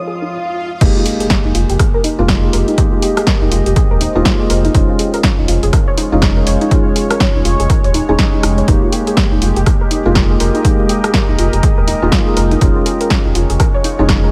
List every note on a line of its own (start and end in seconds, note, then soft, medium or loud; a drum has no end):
0.00 0.29 F2 medium
0.00 0.32 F2 medium
0.00 0.28 G#3 medium
0.00 0.32 G#3 medium
0.00 0.32 C#4 medium
0.00 0.32 D#4 medium
0.00 0.29 F4 medium
0.00 0.32 F4 medium
0.00 0.30 C5 medium
0.00 0.29 D#5 medium
0.00 0.32 D#6 medium
0.00 swell medium
0.07 0.12 G#4 medium
0.22 0.30 D#4 medium
0.81 0.91 F1 medium
0.81 2.15 G#3 medium
0.81 12.57 G#3 medium
0.81 2.15 A#3 medium
0.81 2.15 D#4 medium
0.81 0.94 D#4 loud
0.81 2.15 G4 medium
0.81 4.71 G4 medium
0.81 2.76 A#4 medium
0.81 4.71 D#5 medium
0.81 kick loud
0.81 closed hi-hat medium
0.81 crash loud
0.81 impact medium
0.96 0.99 F4 medium
1.06 1.14 G4 medium
1.06 open hi-hat loud
1.20 1.26 G#4 loud
1.20 closed hi-hat medium
1.30 1.39 A#4 medium
1.30 kick loud
1.30 snare loud
1.30 closed hi-hat medium
1.45 1.52 F1 loud
1.45 1.48 D#4 medium
1.55 1.65 F1 medium
1.55 1.60 F4 medium
1.55 open hi-hat loud
1.70 1.77 F1 loud
1.70 1.78 G4 loud
1.70 closed hi-hat medium
1.79 1.88 G#4 loud
1.79 kick loud
1.79 cross-stick medium
1.79 closed hi-hat medium
1.94 1.98 A#4 loud
2.04 2.09 D#4 loud
2.04 open hi-hat loud
2.19 2.49 F1 loud
2.19 2.75 G#3 medium
2.19 2.75 A#3 medium
2.19 2.75 D#4 medium
2.19 2.75 F4 medium
2.19 2.24 F4 loud
2.28 2.37 G4 medium
2.28 kick loud
2.28 cross-stick medium
2.28 snare loud
2.28 closed hi-hat medium
2.43 2.47 G#4 medium
2.53 2.64 F1 loud
2.53 2.66 A#4 loud
2.53 open hi-hat loud
2.68 2.76 D#4 loud
2.68 closed hi-hat soft
2.78 4.12 G#3 medium
2.78 4.12 A#3 medium
2.78 2.90 D#4 loud
2.78 4.12 D#4 medium
2.78 4.12 G4 medium
2.78 4.73 C5 medium
2.78 kick loud
2.78 closed hi-hat medium
2.93 2.96 F4 medium
3.02 3.11 G4 medium
3.02 open hi-hat loud
3.17 3.23 G#4 loud
3.17 cross-stick medium
3.17 closed hi-hat medium
3.27 3.35 A#4 medium
3.27 kick loud
3.27 snare loud
3.27 closed hi-hat medium
3.42 3.49 F1 loud
3.42 3.45 D#4 medium
3.52 3.62 F1 medium
3.52 3.57 F4 medium
3.52 open hi-hat loud
3.66 3.73 F1 loud
3.66 3.75 G4 loud
3.66 closed hi-hat medium
3.76 3.84 G#4 loud
3.76 kick loud
3.76 closed hi-hat medium
3.91 4.07 D#1 medium
3.91 3.94 A#4 loud
4.01 4.06 D#4 loud
4.01 open hi-hat loud
4.15 4.22 D#1 loud
4.15 4.72 G#3 medium
4.15 4.72 A#3 medium
4.15 4.72 D#4 medium
4.15 4.21 F4 loud
4.15 4.72 F4 medium
4.25 4.34 G4 medium
4.25 kick loud
4.25 snare loud
4.25 closed hi-hat medium
4.40 4.43 G#4 medium
4.50 4.69 F1 medium
4.50 4.62 A#4 loud
4.50 open hi-hat loud
4.65 4.73 D#4 loud
4.65 closed hi-hat soft
4.75 4.85 F1 loud
4.75 6.09 G#3 medium
4.75 6.09 C#4 medium
4.75 4.87 D#4 loud
4.75 6.09 F4 medium
4.75 6.69 F4 medium
4.75 8.64 C#5 loud
4.75 kick loud
4.75 closed hi-hat medium
4.89 4.93 F4 medium
4.99 5.07 G#4 medium
4.99 open hi-hat loud
5.14 5.19 A#4 loud
5.14 closed hi-hat medium
5.23 5.32 C#5 medium
5.23 kick loud
5.23 snare loud
5.23 closed hi-hat medium
5.38 5.45 F1 loud
5.38 5.42 D#4 medium
5.48 5.59 F1 medium
5.48 5.53 F4 medium
5.48 open hi-hat loud
5.63 5.70 F1 loud
5.63 5.71 G#4 loud
5.63 closed hi-hat medium
5.73 5.81 A#4 loud
5.73 kick loud
5.73 cross-stick medium
5.73 closed hi-hat medium
5.88 5.91 C#5 loud
5.97 6.02 D#4 loud
5.97 open hi-hat loud
6.12 6.42 F1 loud
6.12 6.69 G#3 medium
6.12 6.69 C#4 medium
6.12 6.69 D#4 medium
6.12 6.18 F4 loud
6.22 6.30 G#4 medium
6.22 kick loud
6.22 cross-stick medium
6.22 snare loud
6.22 closed hi-hat medium
6.37 6.40 A#4 medium
6.47 6.57 F1 loud
6.47 6.59 C#5 loud
6.47 open hi-hat loud
6.61 6.70 D#4 loud
6.61 closed hi-hat soft
6.71 8.05 G#3 medium
6.71 8.05 C#4 medium
6.71 6.84 D#4 loud
6.71 8.05 F4 medium
6.71 12.57 G4 medium
6.71 kick loud
6.71 closed hi-hat medium
6.86 6.89 F4 medium
6.96 7.04 G#4 medium
6.96 open hi-hat loud
7.10 7.16 A#4 loud
7.10 cross-stick medium
7.10 closed hi-hat medium
7.20 7.29 C#5 medium
7.20 kick loud
7.20 snare loud
7.20 closed hi-hat medium
7.35 7.42 F1 loud
7.35 7.38 D#4 medium
7.45 7.55 F1 medium
7.45 7.50 F4 medium
7.45 open hi-hat loud
7.60 7.67 F1 loud
7.60 7.68 G#4 loud
7.60 closed hi-hat medium
7.70 7.78 A#4 loud
7.70 kick loud
7.70 closed hi-hat medium
7.84 8.00 D#1 medium
7.84 7.88 C#5 loud
7.84 closed hi-hat soft
7.94 8.03 D#4 loud
7.94 open hi-hat loud
8.09 8.16 D#1 loud
8.09 8.66 G#3 medium
8.09 8.66 C#4 medium
8.09 8.66 D#4 medium
8.09 8.17 G#4 loud
8.19 kick loud
8.19 snare loud
8.19 closed hi-hat medium
8.33 8.37 D#4 medium
8.43 8.62 F1 medium
8.43 8.52 D#4 medium
8.43 cross-stick medium
8.43 open hi-hat loud
8.58 8.64 C#5 medium
8.58 closed hi-hat soft
8.68 8.78 F1 loud
8.68 10.02 G#3 medium
8.68 10.02 A#3 medium
8.68 10.02 D#4 medium
8.68 8.80 D#4 loud
8.68 10.02 G4 medium
8.68 12.58 A#4 medium
8.68 12.58 D#5 medium
8.68 kick loud
8.68 closed hi-hat medium
8.83 8.86 F4 medium
8.93 9.01 G4 medium
8.93 open hi-hat loud
9.07 9.13 G#4 loud
9.07 closed hi-hat medium
9.17 9.25 A#4 medium
9.17 kick loud
9.17 snare loud
9.17 closed hi-hat medium
9.32 9.39 F1 loud
9.32 9.35 D#4 medium
9.42 9.52 F1 medium
9.42 9.47 F4 medium
9.42 open hi-hat loud
9.56 9.63 F1 loud
9.56 9.65 G4 medium
9.56 closed hi-hat soft
9.66 9.75 G#4 loud
9.66 kick loud
9.66 cross-stick medium
9.66 closed hi-hat medium
9.81 9.84 A#4 loud
9.91 9.96 D#4 loud
9.91 open hi-hat loud
10.06 10.35 F1 loud
10.06 10.62 G#3 medium
10.06 10.62 A#3 medium
10.06 10.62 D#4 medium
10.06 10.62 F4 medium
10.06 10.11 F4 loud
10.15 10.24 G4 medium
10.15 kick loud
10.15 cross-stick medium
10.15 snare loud
10.15 closed hi-hat medium
10.30 10.34 G#4 medium
10.40 10.51 F1 loud
10.40 10.53 A#4 loud
10.40 open hi-hat loud
10.55 10.63 D#4 loud
10.55 closed hi-hat soft
10.65 11.99 G#3 medium
10.65 11.99 A#3 medium
10.65 11.99 D#4 medium
10.65 10.77 D#4 loud
10.65 11.99 G4 medium
10.65 kick loud
10.65 closed hi-hat medium
10.79 10.83 F4 medium
10.89 10.98 G4 medium
10.89 open hi-hat loud
11.04 11.10 G#4 loud
11.04 cross-stick medium
11.04 closed hi-hat medium
11.14 11.22 A#4 medium
11.14 kick loud
11.14 snare loud
11.14 closed hi-hat medium
11.29 11.36 F1 loud
11.29 11.32 D#4 medium
11.38 11.49 F1 medium
11.38 11.44 F4 medium
11.38 open hi-hat loud
11.53 11.60 F1 loud
11.53 11.62 G4 loud
11.53 closed hi-hat medium
11.63 11.71 G#4 loud
11.63 kick loud
11.63 closed hi-hat medium
11.78 11.94 D#1 medium
11.78 11.81 A#4 loud
11.88 11.93 D#4 loud
11.88 open hi-hat loud
12.02 12.09 D#1 loud
12.02 12.59 G#3 medium
12.02 12.59 A#3 medium
12.02 12.59 D#4 medium
12.02 12.59 F4 medium
12.02 12.08 F4 loud
12.12 12.21 G4 medium
12.12 kick loud
12.12 snare loud
12.12 closed hi-hat medium
12.27 12.30 G#4 medium
12.37 12.56 F1 medium
12.37 12.49 A#4 loud
12.37 open hi-hat loud
12.51 12.60 D#4 loud
12.51 closed hi-hat soft
12.61 12.72 F1 loud
12.61 13.96 G#3 medium
12.61 14.31 G#3 medium
12.61 13.96 C#4 medium
12.61 12.74 D#4 loud
12.61 13.96 F4 medium
12.61 14.31 F4 medium
12.61 14.31 C#5 loud
12.61 kick loud
12.61 closed hi-hat medium
12.76 12.79 F4 medium
12.86 12.94 G#4 medium
12.86 open hi-hat loud
13.01 13.06 A#4 loud
13.01 closed hi-hat medium
13.10 13.19 C#5 medium
13.10 kick loud
13.10 snare loud
13.10 closed hi-hat medium
13.25 13.32 F1 loud
13.25 13.29 D#4 medium
13.35 13.46 F1 medium
13.35 13.40 F4 medium
13.35 open hi-hat loud
13.50 13.57 F1 loud
13.50 13.58 G#4 medium
13.50 closed hi-hat medium
13.60 13.68 A#4 loud
13.60 kick loud
13.60 cross-stick medium
13.60 closed hi-hat medium
13.74 13.78 C#5 loud
13.84 13.89 D#4 loud
13.84 open hi-hat loud
13.99 14.29 F1 loud
13.99 14.31 G#3 medium
13.99 14.31 C#4 medium
13.99 14.31 D#4 medium
13.99 14.05 F4 loud
14.09 14.17 G#4 medium
14.09 kick loud
14.09 cross-stick medium
14.09 snare loud
14.09 closed hi-hat medium
14.24 14.27 A#4 medium